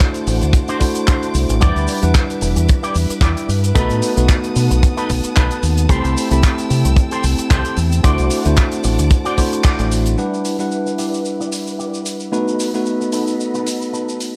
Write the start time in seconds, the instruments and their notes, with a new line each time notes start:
Already playing: tine electric piano A3 D4 E4 F#4 C5, string section C5 F#5 A5 D6
0.00 kick, clap, closed hi-hat, shaker, maracas
0.14 closed hi-hat, maracas, shaker
0.27 fingered electric bass A1, muted clean electric guitar stroke, open hi-hat, shaker
0.41 fingered electric bass D2, muted clean electric guitar stroke, closed hi-hat, shaker, maracas
0.53 muted clean electric guitar stroke, kick, closed hi-hat, shaker, maracas
0.68 clean electric guitar D4 F#4 C5, closed hi-hat, shaker, maracas
0.80 tine electric piano A3 D4 E4 F#4 C5, kick, open hi-hat, shaker
0.95 muted clean electric guitar stroke, closed hi-hat, maracas, shaker
1.07 clean electric guitar D4 F#4 C5, kick, clap, closed hi-hat, shaker, maracas
1.23 closed hi-hat, shaker, maracas
1.34 fingered electric bass C2, open hi-hat, shaker
1.49 fingered electric bass A1, closed hi-hat, shaker, maracas
1.60 fingered electric bass E2, tine electric piano G3 D4 E4 B4 F#5, clean electric guitar E4 G4 D5, string section B4 E5, kick, closed hi-hat, maracas, shaker
1.76 fingered electric bass D2, closed hi-hat, maracas, shaker
1.87 open hi-hat, shaker
2.02 fingered electric bass E2, tine electric piano G3 D4 E4 B4 F#5, closed hi-hat, maracas, shaker
2.15 kick, clap, closed hi-hat, maracas, shaker
2.30 closed hi-hat, shaker, maracas
2.41 fingered electric bass E1, muted clean electric guitar stroke, open hi-hat, shaker
2.56 fingered electric bass E2, muted clean electric guitar stroke, closed hi-hat, shaker, maracas
2.68 muted clean electric guitar stroke, kick, closed hi-hat, shaker, maracas
2.83 clean electric guitar E4 G4 D5, closed hi-hat, shaker, maracas
2.95 fingered electric bass E2, open hi-hat, shaker
3.09 muted clean electric guitar stroke, muted fingered electric bass stroke, closed hi-hat, maracas, shaker
3.21 fingered electric bass E2, clean electric guitar E4 G4 D5, kick, clap, closed hi-hat, maracas, shaker
3.37 closed hi-hat, shaker, maracas
3.49 fingered electric bass G2, open hi-hat, shaker
3.64 closed hi-hat, maracas, shaker
3.75 fingered electric bass B1, tine electric piano A3 B3 D#4 F#4 B4, clean electric guitar D#4 A4 B4, string section F#5 A5 D#6, kick, closed hi-hat, maracas, shaker
3.90 fingered electric bass A2, closed hi-hat, maracas, shaker
4.02 open hi-hat, shaker
4.16 fingered electric bass B1, tine electric piano A3 B3 D#4 F#4 B4, closed hi-hat, maracas, shaker
4.29 kick, clap, closed hi-hat, maracas, shaker
4.44 closed hi-hat, maracas, shaker
4.55 fingered electric bass B2, muted clean electric guitar stroke, open hi-hat, shaker
4.70 fingered electric bass B1, muted clean electric guitar stroke, closed hi-hat, maracas, shaker
4.82 muted clean electric guitar stroke, kick, closed hi-hat, shaker, maracas
4.97 clean electric guitar D#4 A4 B4, closed hi-hat, maracas, shaker
5.10 fingered electric bass B1, kick, open hi-hat, shaker
5.23 muted clean electric guitar stroke, closed hi-hat, maracas, shaker
5.36 fingered electric bass B1, clean electric guitar D#4 A4 B4, kick, clap, closed hi-hat, maracas, shaker
5.51 closed hi-hat, maracas, shaker
5.63 fingered electric bass D#2, open hi-hat, shaker
5.77 closed hi-hat, maracas, shaker
5.89 fingered electric bass C2, tine electric piano A3 C4 E4 G4 B5, string section C4 G5 E6, clean electric guitar G4 A4 C5, kick, closed hi-hat, maracas, shaker
6.05 fingered electric bass C2, closed hi-hat, maracas, shaker
6.17 open hi-hat, shaker
6.30 fingered electric bass C2, tine electric piano A3 C4 E4 G4 B5, closed hi-hat, maracas, shaker
6.43 kick, clap, closed hi-hat, maracas, shaker
6.58 closed hi-hat, maracas, shaker
6.70 fingered electric bass C3, muted clean electric guitar stroke, open hi-hat, shaker
6.85 fingered electric bass C2, muted clean electric guitar stroke, closed hi-hat, maracas, shaker
6.96 muted clean electric guitar stroke, kick, closed hi-hat, maracas, shaker
7.11 clean electric guitar G4 A4 C5, closed hi-hat, maracas, shaker
7.24 fingered electric bass C2, open hi-hat, shaker
7.38 muted clean electric guitar stroke, muted fingered electric bass stroke, closed hi-hat, shaker, maracas
7.50 fingered electric bass C2, clean electric guitar G4 A4 C5, kick, clap, closed hi-hat, shaker, maracas
7.65 closed hi-hat, maracas, shaker
7.77 fingered electric bass E2, open hi-hat, shaker
7.92 closed hi-hat, shaker, maracas
8.03 fingered electric bass D2, tine electric piano A3 D4 E4 F#4 C5, clean electric guitar F#4 C5 D5, string section F#5 A5 D6, kick, closed hi-hat, shaker, maracas
8.18 fingered electric bass C2, closed hi-hat, maracas, shaker
8.30 open hi-hat, shaker
8.44 fingered electric bass D2, tine electric piano A3 D4 E4 F#4 C5, closed hi-hat, maracas, shaker
8.56 kick, clap, closed hi-hat, maracas, shaker
8.72 closed hi-hat, maracas, shaker
8.84 fingered electric bass A1, muted clean electric guitar stroke, open hi-hat, shaker
8.98 fingered electric bass D2, muted clean electric guitar stroke, closed hi-hat, maracas, shaker
9.11 muted clean electric guitar stroke, kick, closed hi-hat, shaker, maracas
9.25 clean electric guitar F#4 C5 D5, closed hi-hat, maracas, shaker
9.37 tine electric piano A3 D4 E4 F#4 C5, kick, open hi-hat, shaker
9.52 muted clean electric guitar stroke, closed hi-hat, maracas, shaker
9.63 clean electric guitar F#4 C5 D5, kick, clap, closed hi-hat, shaker, maracas
9.79 fingered electric bass A1, closed hi-hat, shaker, maracas
9.91 open hi-hat, shaker
10.06 closed hi-hat, maracas, shaker
10.17 tine electric piano G3 D4 E4 B4 F#5, clean electric guitar E4 G4 D5, string section B4 E5 D6, shaker
10.34 shaker
10.45 open hi-hat, shaker
10.59 tine electric piano G3 D4 E4 B4 F#5, shaker
10.71 shaker
10.86 muted clean electric guitar stroke, shaker
10.98 clean electric guitar E4 G4 D5, open hi-hat, shaker
11.14 shaker
11.25 shaker
11.40 clean electric guitar E4 G4 D5, shaker
11.52 open hi-hat, shaker
11.67 muted clean electric guitar stroke, shaker
11.78 clean electric guitar E4 G4 D5, shaker
11.94 shaker
12.06 open hi-hat, shaker
12.20 shaker
12.32 tine electric piano A3 B3 D#4 F#4 B4, clean electric guitar D#4 A4 B4, string section A4 D#5 F#5 B5, shaker
12.48 shaker
12.60 open hi-hat, shaker
12.74 tine electric piano A3 B3 D#4 F#4 B4, shaker
12.86 shaker
13.01 muted clean electric guitar stroke, shaker
13.12 clean electric guitar D#4 A4 B4, open hi-hat, shaker
13.27 shaker
13.40 shaker
13.54 clean electric guitar D#4 A4 B4, shaker
13.67 open hi-hat, shaker
13.81 muted clean electric guitar stroke, shaker
13.93 clean electric guitar D#4 A4 B4, shaker
14.09 shaker
14.20 open hi-hat, shaker